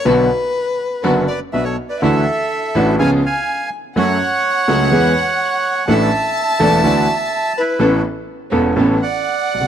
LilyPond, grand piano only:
\new Staff \with { instrumentName = "Grand piano" } { \clef bass \time 4/4 \key b \minor \tempo 4 = 124 <b,, b, d fis b fis'>8 r4. <fis,, fis, d fis b fis'>8 r8 <b,, b,>8 r8 | \key d \major <d, d e a d' fis'>8 r4 <a,, a, e a d' fis'>8 <cis, cis eis b cis' gis'>8 r4. | <fis, fis a cis' a'>8 r4 <cis, cis fis a cis' a'>8 <e, e gis b gis'>8 r4. | <a,, a, e a d' a'>8 r4 <e,, e, e a d' a'>8 <d, d e a d' fis'>8 r4. |
<a,, a, e b cis' a'>8 r4 <e,, e, e b cis' a'>8 <a,, a, e b cis' a'>8 r4 r32 b,,32 c,32 r32 | }